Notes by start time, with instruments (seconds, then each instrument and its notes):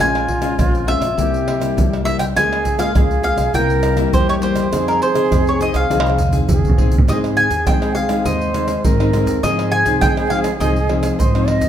0.00 upright bass A#1, nylon-string guitar A#2 G#3 C#4 F4, flute F4, mandolin G#5, pandeiro, tamborim, shaker, surdo
0.15 pandeiro, tamborim, shaker
0.28 pandeiro, surdo
0.41 nylon-string guitar G#3 C#4 F4, pandeiro, tamborim, shaker
0.58 upright bass A#1, nylon-string guitar F2, pandeiro, tamborim, shaker, surdo
0.75 pandeiro, shaker
0.86 nylon-string guitar G#3 C#4 F4, mandolin E5, pandeiro
1.01 upright bass A#1, pandeiro, tamborim, shaker
1.17 upright bass C2, nylon-string guitar C3 G3 A#3 E4, flute G4, pandeiro, shaker, surdo
1.34 pandeiro, shaker
1.48 pandeiro, tamborim
1.59 nylon-string guitar G3 A#3 E4, pandeiro, tamborim, shaker
1.76 upright bass C2, nylon-string guitar G2, pandeiro, shaker, surdo
1.93 pandeiro, tamborim, shaker
2.04 nylon-string guitar G3 A#3 E4, mandolin E5, pandeiro, shaker
2.19 mandolin G5, pandeiro, tamborim, shaker
2.35 upright bass C#2, nylon-string guitar C#3 G#3 A#3 F4, flute G#4, mandolin G#5, pandeiro, tamborim, shaker, surdo
2.53 pandeiro, tamborim, shaker
2.65 pandeiro, shaker, surdo
2.78 nylon-string guitar G#3 A#3 F4, mandolin F5, pandeiro, tamborim, shaker
2.95 upright bass C#2, nylon-string guitar C#3, flute G#4, pandeiro, tamborim, shaker, surdo
3.11 pandeiro, shaker
3.23 nylon-string guitar G#3 A#3 F4, mandolin F5, pandeiro, shaker
3.37 upright bass B1, pandeiro, tamborim, shaker
3.53 upright bass C2, nylon-string guitar C3 G3 A#3 E4, flute A#4, mandolin G5, pandeiro, shaker, surdo
3.70 pandeiro, shaker
3.83 pandeiro, tamborim, shaker
3.96 nylon-string guitar G3 A#3 E4, pandeiro, tamborim, shaker
4.13 upright bass E2, nylon-string guitar G2, flute G4, mandolin C5, pandeiro, shaker, surdo
4.29 mandolin C#5, pandeiro, tamborim, shaker
4.41 nylon-string guitar G3 A#3 E4, mandolin C5, pandeiro
4.56 pandeiro, tamborim, shaker
4.72 upright bass F2, nylon-string guitar F3 C4 D#4 G#4, flute G#4, pandeiro, tamborim, shaker, surdo
4.88 mandolin A#4, pandeiro, tamborim, shaker
5.02 mandolin C5, pandeiro
5.14 nylon-string guitar C4 D#4 G#4, pandeiro, tamborim, shaker
5.31 upright bass F2, nylon-string guitar C3, pandeiro, tamborim, shaker, surdo
5.47 mandolin C#5, pandeiro, shaker
5.60 nylon-string guitar C4 D#4 G#4, mandolin D#5, pandeiro, shaker
5.74 upright bass C2, mandolin F5, pandeiro, tamborim, shaker
5.90 upright bass C2, nylon-string guitar F3 C4 D#4 G#4, pandeiro, tamborim, shaker, surdo
6.00 tamborim
6.06 pandeiro, tamborim, shaker
6.18 surdo, pandeiro, shaker
6.29 nylon-string guitar C4 D#4 G#4, surdo, pandeiro, shaker
6.39 surdo
6.49 upright bass F2, nylon-string guitar C3, flute G#4, surdo, pandeiro, shaker
6.59 surdo
6.65 upright bass C3, pandeiro, shaker
6.70 surdo
6.78 upright bass A#2, nylon-string guitar C4 D#4 G#4, pandeiro, surdo
6.89 upright bass G#2, pandeiro, shaker, surdo
6.98 surdo
7.08 upright bass G#2, nylon-string guitar G#2 G#3 C4 D#4, flute G#4, mandolin D#5, pandeiro, tamborim, shaker, surdo
7.24 pandeiro, tamborim, shaker
7.37 mandolin G#5, pandeiro, shaker
7.50 upright bass D#2, pandeiro, shaker
7.67 nylon-string guitar D#3 G#3 C4 D#4, upright bass G#3, mandolin G5, pandeiro, tamborim, shaker, surdo
7.82 pandeiro, tamborim, shaker
7.95 mandolin F5, pandeiro, shaker
8.09 nylon-string guitar G#3 C4 D#4, pandeiro, tamborim, shaker
8.25 upright bass D#2, nylon-string guitar G#2, flute C5, mandolin D#5, pandeiro, shaker, surdo
8.41 pandeiro, shaker
8.53 nylon-string guitar G#3 C4 D#4, pandeiro, tamborim, shaker
8.68 pandeiro, tamborim, shaker
8.84 upright bass G#2, nylon-string guitar D#3 G#3 C4 D#4, flute A#4, pandeiro, shaker, surdo
9.00 nylon-string guitar G#3 C4 D#4, pandeiro, tamborim, shaker
9.13 nylon-string guitar G#3 C4 D#4, pandeiro, tamborim, shaker
9.26 upright bass D#2, pandeiro, shaker
9.43 upright bass G#2, nylon-string guitar G#2 F3 C4 D#4, flute G#4, mandolin D#5, pandeiro, tamborim, shaker, surdo
9.59 pandeiro, tamborim, shaker
9.72 mandolin G#5, pandeiro, shaker
9.85 upright bass C2, nylon-string guitar F3 C4 D#4, pandeiro, shaker
10.01 nylon-string guitar G#2, upright bass G#3, mandolin G5, pandeiro, tamborim, shaker, surdo
10.17 pandeiro, tamborim, shaker
10.30 nylon-string guitar F3 C4 D#4, mandolin F5, pandeiro
10.44 pandeiro, tamborim, shaker
10.60 upright bass C2, nylon-string guitar G#2 F3 C4 D#4, mandolin D#5, pandeiro, shaker, surdo
10.76 pandeiro, shaker
10.89 nylon-string guitar F3 C4 D#4, pandeiro, tamborim
11.03 pandeiro, tamborim, shaker
11.19 upright bass G#2, nylon-string guitar G#2, flute C5, pandeiro, shaker, surdo
11.35 nylon-string guitar F3 C4 D#4, pandeiro, tamborim, shaker
11.48 flute D#5, pandeiro, tamborim
11.61 upright bass D#2, pandeiro, shaker